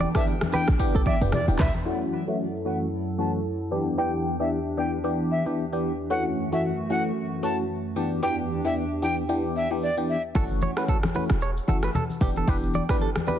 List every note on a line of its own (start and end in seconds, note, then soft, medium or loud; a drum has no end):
0.00 0.11 E3 loud
0.00 1.83 E3 medium
0.00 0.11 B3 medium
0.00 1.83 B3 medium
0.00 0.11 D4 medium
0.00 1.83 D4 medium
0.00 0.12 G4 loud
0.00 1.83 G4 medium
0.00 0.08 D5 medium
0.00 high conga medium
0.15 0.34 E3 medium
0.15 0.34 B3 medium
0.15 0.34 D4 medium
0.15 0.34 G4 medium
0.15 0.21 A4 medium
0.15 0.25 E5 medium
0.15 kick loud
0.15 cross-stick medium
0.15 shaker medium
0.26 shaker medium
0.41 cross-stick medium
0.41 high conga medium
0.41 shaker medium
0.52 0.74 E3 medium
0.52 0.74 B3 medium
0.52 0.74 D4 medium
0.52 0.74 G4 medium
0.52 0.61 B4 medium
0.52 0.66 G5 medium
0.52 high conga medium
0.52 shaker medium
0.68 0.77 A1 medium
0.68 cross-stick medium
0.68 shaker medium
0.79 1.18 E3 medium
0.79 1.18 B3 medium
0.79 1.18 D4 medium
0.79 1.18 G4 loud
0.79 kick loud
0.79 shaker medium
0.95 1.03 B1 medium
0.95 1.01 A4 medium
0.95 shaker medium
1.06 1.14 D5 medium
1.06 1.19 E5 medium
1.06 kick loud
1.06 high conga medium
1.21 1.30 E1 medium
1.21 1.40 E3 medium
1.21 1.40 B3 medium
1.21 1.40 D4 medium
1.21 1.40 G4 medium
1.21 mid tom loud
1.21 shaker medium
1.32 1.46 D5 medium
1.32 cross-stick medium
1.32 high conga medium
1.32 low conga medium
1.32 shaker medium
1.48 1.56 D1 medium
1.48 1.67 E3 medium
1.48 1.67 B3 medium
1.48 1.67 D4 medium
1.48 1.67 G4 medium
1.48 shaker medium
1.59 1.71 C#2 medium
1.59 1.67 B4 medium
1.59 1.72 E5 medium
1.59 kick loud
1.59 clap medium
1.59 mid tom medium
1.59 open hi-hat medium
1.59 low conga medium
1.59 shaker medium
1.74 high conga medium
1.74 shaker soft
1.85 3.70 F#2 medium
1.85 2.24 E3 medium
1.85 3.70 F#3 medium
1.85 2.24 A3 medium
1.85 2.24 C#4 medium
1.85 3.70 E4 medium
1.85 2.24 F#4 medium
1.85 3.70 A4 medium
1.85 1.99 F#5 medium
2.27 2.46 E3 medium
2.27 2.46 A3 medium
2.27 2.46 C#4 medium
2.27 2.47 F#4 medium
2.27 2.37 E5 medium
2.65 2.86 E3 medium
2.65 2.86 A3 medium
2.65 2.86 C#4 medium
2.65 2.86 F#4 medium
2.65 2.79 F#5 medium
3.18 3.39 E3 medium
3.18 3.39 A3 medium
3.18 3.39 C#4 medium
3.18 3.39 F#4 medium
3.18 3.32 A5 medium
3.71 6.08 E2 medium
3.71 3.96 E3 medium
3.71 10.31 E3 medium
3.71 3.96 B3 medium
3.71 6.08 D4 medium
3.71 3.96 D4 medium
3.71 6.08 G4 medium
3.71 3.96 G4 medium
3.98 4.36 E3 medium
3.98 4.36 B3 medium
3.98 4.36 D4 medium
3.98 4.36 G4 loud
3.98 4.11 G5 loud
4.40 4.59 E3 medium
4.40 4.59 B3 medium
4.40 4.59 D4 medium
4.40 4.59 G4 medium
4.40 4.50 E5 medium
4.77 4.98 E3 medium
4.77 4.99 B3 medium
4.77 4.99 D4 medium
4.77 4.99 G4 medium
4.77 4.91 G5 medium
5.04 5.42 E3 medium
5.04 5.42 B3 medium
5.04 5.42 D4 medium
5.04 5.43 G4 medium
5.31 5.44 E5 medium
5.46 5.65 E3 medium
5.46 5.65 B3 medium
5.46 5.65 D4 medium
5.46 5.65 G4 medium
5.72 5.91 E3 medium
5.72 5.92 B3 medium
5.72 5.92 D4 medium
5.72 5.92 G4 medium
6.10 7.94 F#2 medium
6.10 6.48 E3 medium
6.10 6.49 A3 medium
6.10 7.94 A3 medium
6.10 6.49 C#4 medium
6.10 7.94 F#4 medium
6.10 6.49 F#4 loud
6.10 6.24 F#5 medium
6.52 6.71 E3 medium
6.52 6.71 A3 medium
6.52 6.71 C#4 medium
6.52 6.71 F#4 medium
6.52 6.62 E5 medium
6.90 7.11 E3 medium
6.90 7.11 A3 medium
6.90 7.11 C#4 medium
6.90 7.11 F#4 medium
6.90 7.03 F#5 medium
7.43 7.64 E3 medium
7.43 7.64 A3 medium
7.43 7.64 C#4 medium
7.43 7.64 F#4 medium
7.43 7.57 A5 medium
7.96 10.33 E2 medium
7.96 8.21 E3 medium
7.96 8.21 B3 medium
7.96 10.33 D4 medium
7.96 8.21 D4 medium
7.96 10.33 G4 medium
7.96 8.21 G4 medium
8.22 8.61 E3 medium
8.22 8.61 B3 medium
8.22 8.61 D4 medium
8.22 8.61 G4 loud
8.22 8.36 G5 medium
8.64 8.83 E3 medium
8.64 8.84 B3 medium
8.64 8.84 D4 medium
8.64 8.84 G4 medium
8.64 8.74 E5 medium
9.02 9.23 E3 medium
9.02 9.23 B3 medium
9.02 9.23 D4 medium
9.02 9.24 G4 medium
9.02 9.16 G5 medium
9.29 9.67 E3 medium
9.29 9.67 B3 medium
9.29 9.67 D4 medium
9.29 9.67 G4 loud
9.56 9.69 E5 medium
9.71 9.90 E3 medium
9.71 9.90 B3 medium
9.71 9.90 D4 medium
9.71 9.90 G4 medium
9.83 9.96 D5 medium
9.97 10.16 E3 medium
9.97 10.16 B3 medium
9.97 10.16 D4 medium
9.97 10.17 G4 medium
10.09 10.22 E5 medium
10.35 10.67 F#1 loud
10.35 10.73 E3 medium
10.35 10.73 A3 medium
10.35 10.74 C#4 medium
10.35 10.74 F#4 loud
10.35 10.44 A4 loud
10.35 kick loud
10.35 shaker medium
10.51 shaker soft
10.61 10.70 C#5 medium
10.61 high conga medium
10.61 shaker medium
10.77 10.96 E3 medium
10.77 10.96 A3 medium
10.77 10.96 C#4 medium
10.77 10.96 F#4 medium
10.77 10.83 B4 medium
10.77 cross-stick medium
10.77 shaker medium
10.88 10.97 A4 medium
10.88 kick medium
10.88 shaker medium
11.03 cross-stick medium
11.03 high conga medium
11.03 shaker medium
11.14 11.36 E3 medium
11.14 11.36 A3 medium
11.14 11.36 C#4 medium
11.14 11.36 F#4 medium
11.14 11.23 B4 medium
11.14 high conga medium
11.14 shaker medium
11.30 11.59 E1 medium
11.30 cross-stick loud
11.30 shaker loud
11.42 11.50 C#5 medium
11.42 shaker medium
11.57 shaker medium
11.68 11.88 F#1 medium
11.68 11.89 E3 medium
11.68 11.89 A3 medium
11.68 11.89 C#4 medium
11.68 11.89 F#4 medium
11.68 11.76 A4 medium
11.68 high conga medium
11.68 shaker medium
11.83 11.90 B4 medium
11.83 cross-stick medium
11.83 shaker loud
11.95 12.03 A4 medium
11.95 high conga medium
11.95 low conga medium
11.95 shaker medium
12.10 high conga medium
12.10 shaker medium
12.21 12.41 E1 loud
12.21 12.46 E3 medium
12.21 12.46 B3 medium
12.21 12.46 D4 medium
12.21 12.46 G4 medium
12.21 12.29 G4 medium
12.21 kick loud
12.21 low conga medium
12.21 shaker medium
12.36 12.48 A4 medium
12.36 high conga medium
12.36 shaker medium
12.47 12.80 E1 loud
12.47 12.86 E3 medium
12.47 12.86 B3 medium
12.47 12.86 D4 medium
12.47 12.86 G4 loud
12.47 12.56 B4 medium
12.47 kick loud
12.47 shaker medium
12.63 shaker soft
12.74 12.83 D5 medium
12.74 high conga medium
12.74 shaker medium
12.89 13.08 E3 medium
12.89 13.08 B3 medium
12.89 13.08 D4 medium
12.89 13.09 G4 medium
12.89 12.96 B4 medium
12.89 kick loud
12.89 cross-stick medium
12.89 shaker loud
13.01 13.09 A4 medium
13.01 shaker medium
13.16 cross-stick medium
13.16 high conga medium
13.16 shaker medium
13.26 13.39 E3 medium
13.26 13.39 B3 medium
13.26 13.39 D4 medium
13.26 13.39 G4 medium
13.26 13.36 B4 medium
13.26 high conga medium
13.26 shaker medium